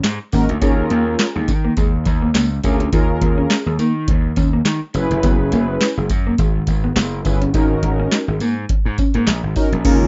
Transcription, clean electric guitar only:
0.33 0.44 A#3 medium
0.62 0.73 C#4 medium
0.91 1.02 A#3 medium
1.07 muted clean electric guitar stroke soft
1.36 1.44 G#3 medium
1.48 muted clean electric guitar stroke soft
1.65 1.73 A#3 medium
1.77 1.88 G#3 medium
2.06 muted clean electric guitar stroke soft
2.22 2.31 A#3 medium
2.35 2.46 A#3 medium
2.64 muted clean electric guitar stroke soft
2.80 2.89 C#4 medium
2.93 3.04 D#4 medium
3.22 muted clean electric guitar stroke soft
3.38 3.47 C#4 medium
3.51 muted clean electric guitar stroke soft
3.67 3.76 G#3 medium
3.79 3.91 A#3 medium
4.08 muted clean electric guitar stroke soft
4.37 4.48 C#4 medium
4.53 4.62 A#3 medium
4.95 5.06 C#4 medium
5.23 5.35 B3 medium
5.52 5.64 A#3 medium
5.69 muted clean electric guitar stroke soft
5.98 6.06 G#3 medium
6.11 muted clean electric guitar stroke soft
6.27 6.35 A#3 medium
6.39 6.50 G#3 medium
6.68 muted clean electric guitar stroke soft
6.84 6.93 B3 medium
6.97 7.08 B3 medium
7.26 muted clean electric guitar stroke soft
7.42 7.50 C#4 medium
7.55 7.66 D#4 medium
7.83 muted clean electric guitar stroke soft
8.00 8.08 C#4 medium
8.12 muted clean electric guitar stroke soft
8.28 8.37 G#3 medium
8.41 8.52 A#3 medium
8.70 muted clean electric guitar stroke soft
8.99 9.10 C#4 medium
9.15 9.24 A#3 medium
9.56 9.68 D#4 medium
9.85 9.96 C#4 medium

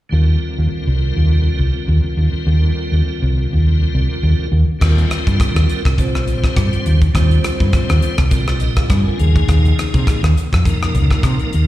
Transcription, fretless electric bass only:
0.12 0.36 D#2 medium
0.58 0.69 D#2 medium
0.72 muted fretless electric bass stroke soft
0.87 1.10 C2 medium
1.16 1.50 D#2 medium
1.59 1.72 C2 medium
1.88 2.01 D#2 medium
2.17 2.30 D#2 medium
2.33 muted fretless electric bass stroke soft
2.47 2.70 D#2 medium
2.92 3.02 D#2 medium
3.06 muted fretless electric bass stroke soft
3.22 3.45 C2 medium
3.53 3.85 D#2 medium
3.95 4.07 C2 medium
4.23 4.36 D#2 medium
4.39 muted fretless electric bass stroke soft
4.52 4.65 D#2 medium
4.68 muted fretless electric bass stroke soft
4.82 5.04 D#2 medium
5.27 5.37 G2 medium
5.55 5.66 D#2 medium
5.85 6.27 C2 medium
6.27 6.40 A#1 medium
6.56 6.69 G2 medium
6.73 muted fretless electric bass stroke soft
6.86 7.09 D#2 medium
7.15 7.38 D#2 medium
7.61 7.71 G2 medium
7.90 8.00 D#2 medium
8.18 8.62 C2 medium
8.62 8.75 A#1 medium
8.90 9.03 G2 medium
9.07 muted fretless electric bass stroke soft
9.20 9.43 D#2 medium
9.49 9.72 D#2 medium
9.94 10.04 C3 medium
10.23 10.33 D#2 medium
10.53 10.96 F2 medium
10.94 11.07 C#2 medium
11.24 11.37 C3 medium
11.40 muted fretless electric bass stroke soft
11.54 11.67 D#2 medium

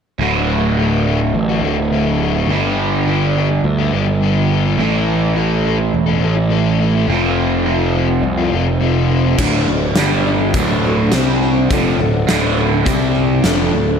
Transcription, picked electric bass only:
0.19 1.30 D1 medium
1.34 1.61 A1 medium
1.61 2.45 D1 medium
2.47 3.59 G1 medium
3.64 3.91 D2 medium
3.93 4.75 G1 medium
4.78 5.89 A1 medium
5.94 6.21 E1 medium
6.23 7.05 A1 medium
7.08 8.20 F1 medium
8.23 8.50 C2 medium
8.53 9.36 F1 medium
9.38 9.66 D1 medium
9.68 9.95 D1 medium
9.97 10.51 G1 medium
10.54 11.08 D1 medium
11.12 11.66 C2 medium
11.70 11.97 F1 medium
11.99 12.26 D1 medium
12.29 12.82 D1 medium
12.86 13.40 C2 medium
13.44 13.71 F1 medium
13.72 13.99 D1 medium

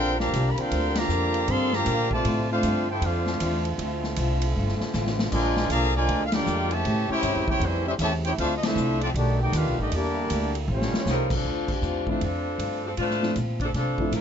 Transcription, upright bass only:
0.00 0.32 A#1 medium
0.33 0.56 C2 medium
0.58 muted upright bass stroke soft
0.71 1.08 D2 medium
1.09 1.46 F2 medium
1.48 1.85 G2 medium
1.86 2.24 A#2 loud
2.25 2.62 A2 loud
2.63 3.00 G2 loud
3.01 3.39 F2 loud
3.41 3.77 E2 medium
3.78 4.15 D2 medium
4.17 4.54 C2 medium
4.55 4.78 G1 loud
4.80 muted upright bass stroke soft
4.94 5.31 A1 loud
5.32 5.69 A#1 medium
5.70 6.07 C2 medium
6.08 6.45 D2 medium
6.46 6.84 F2 loud
6.85 7.07 A2 medium
7.10 muted upright bass stroke soft
7.23 7.37 G2 medium
7.36 7.47 E2 medium
7.48 7.59 C#2 medium
7.60 7.98 F2 loud
7.99 8.36 E2 loud
8.38 8.75 D2 loud
8.76 9.13 C2 loud
9.14 9.51 B1 loud
9.52 9.66 D#2 loud
9.66 9.79 B1 medium
9.79 9.90 A1 medium
9.92 10.28 E2 medium
10.31 10.67 D2 medium
10.68 10.90 A1 loud
10.93 muted upright bass stroke soft
11.06 11.43 C2 medium
11.44 11.81 D2 medium
11.82 12.19 E2 medium
12.21 12.58 F2 medium
12.58 12.96 G2 medium
12.98 13.34 A2 medium
13.36 13.73 A#2 medium
13.74 13.96 C3 medium
13.98 muted upright bass stroke soft
14.12 14.21 A2 medium

